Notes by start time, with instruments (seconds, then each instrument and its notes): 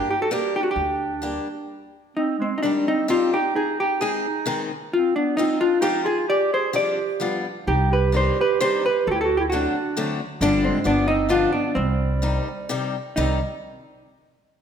0.10 clarinet D#4, hollow-body jazz guitar G4
0.21 clarinet F#4, hollow-body jazz guitar A4
0.31 steel-string acoustic guitar G3 A#3 D4 G4, clarinet G4, hollow-body jazz guitar A#4
0.56 clarinet D4 D#4, hollow-body jazz guitar G4
0.63 hollow-body jazz guitar F#4
0.68 clarinet D4, hollow-body jazz guitar G4
0.76 upright bass D2
1.22 steel-string acoustic guitar G3 A#3 D4 G4
2.17 clarinet C4, hollow-body jazz guitar D#4
2.39 clarinet G#3, hollow-body jazz guitar C4
2.56 clarinet C4, hollow-body jazz guitar D#4
2.63 steel-string acoustic guitar D#3 G3 C4 D#4 G4, clarinet G3, hollow-body jazz guitar D4
2.87 clarinet C4, hollow-body jazz guitar D#4
3.08 steel-string acoustic guitar D#3 G3 C4 D#4 G4, clarinet C4, hollow-body jazz guitar F4
3.33 clarinet D#4, hollow-body jazz guitar G4
3.56 clarinet D#4, hollow-body jazz guitar G#4
3.80 clarinet D#4, hollow-body jazz guitar G4
4.01 steel-string acoustic guitar D#3 G#3 C4 D#4 G#4, clarinet D#4, hollow-body jazz guitar G#4
4.46 steel-string acoustic guitar D#3 G#3 C4 D#4 G#4
4.93 clarinet C4, hollow-body jazz guitar F4
5.16 clarinet B3, hollow-body jazz guitar D4
5.37 steel-string acoustic guitar F3 G#3 C4 D#4 F4, clarinet C4, hollow-body jazz guitar D#4
5.61 clarinet D4, hollow-body jazz guitar F4
5.80 steel-string acoustic guitar F3 G#3 C4 D#4 F4, clarinet D#4, hollow-body jazz guitar G4
6.04 clarinet F4, hollow-body jazz guitar G#4
6.28 clarinet G4, hollow-body jazz guitar D5
6.53 clarinet G#4, hollow-body jazz guitar C5
6.73 steel-string acoustic guitar F3 G3 C4 D4 F4, clarinet G4, hollow-body jazz guitar D5
7.20 steel-string acoustic guitar F3 G3 B3 D4 F4
7.67 upright bass C2, clarinet D#4, hollow-body jazz guitar G4
7.91 clarinet G4, hollow-body jazz guitar B4
8.12 steel-string acoustic guitar D#3 G3 C4 D4 D#4
8.17 clarinet G4, hollow-body jazz guitar C5
8.39 clarinet G4, hollow-body jazz guitar B4
8.61 steel-string acoustic guitar D#3 G3 C4 D4 D#4, clarinet G4, hollow-body jazz guitar C5
8.86 clarinet G4, hollow-body jazz guitar B4
9.07 upright bass D2, clarinet F#4, hollow-body jazz guitar A4
9.11 clarinet E4, hollow-body jazz guitar G4
9.21 clarinet F#4, hollow-body jazz guitar A4
9.37 clarinet E4, hollow-body jazz guitar G4
9.50 steel-string acoustic guitar D3 F#3 A3 C4, hollow-body jazz guitar F#4
9.54 steel-string acoustic guitar D4, clarinet D4
9.97 steel-string acoustic guitar D3 F#3 A3 C4 D4
10.41 upright bass G1, steel-string acoustic guitar D3 F3 G3 C4 D4, clarinet G3, hollow-body jazz guitar D4
10.64 clarinet G#3, hollow-body jazz guitar C4
10.84 upright bass G1, steel-string acoustic guitar D3 F3 G3 B3 D4, clarinet B3, hollow-body jazz guitar D4
11.08 clarinet C4, hollow-body jazz guitar D#4
11.29 steel-string acoustic guitar D3 F3 G3 B3 D4, clarinet D4, hollow-body jazz guitar F4
11.53 clarinet B3, hollow-body jazz guitar D4
11.74 upright bass C2, clarinet G3, hollow-body jazz guitar C4
12.22 steel-string acoustic guitar C3 D#3 G3 C4 D#4
12.69 steel-string acoustic guitar C3 D#3 G3 C4 D#4
13.16 upright bass C2, steel-string acoustic guitar D#3 G3 C4 D#4, clarinet C4, hollow-body jazz guitar D#4